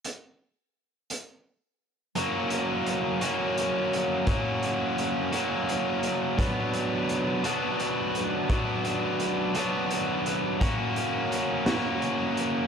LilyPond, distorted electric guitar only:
\new Staff \with { instrumentName = "Distorted electric guitar" } { \time 6/8 \key fis \phrygian \tempo 4. = 57 r2. | <fis ais cis' fis'>4. <fis ais cis' fis'>4. | <fis ais cis' fis'>4. <fis ais cis' fis'>4. | <fis b d' fis'>4. <fis b d' fis'>4. |
<fis b d' fis'>4. <fis b d' fis'>4. | <ais cis' fis'>4. <ais cis' fis'>4. | }